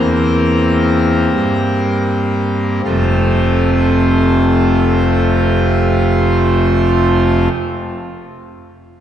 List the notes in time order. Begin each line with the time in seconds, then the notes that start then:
Already playing: E2 A#3 C4 A#4
1.32 G2
2.85 F1 F2 C3 A3 C4 F4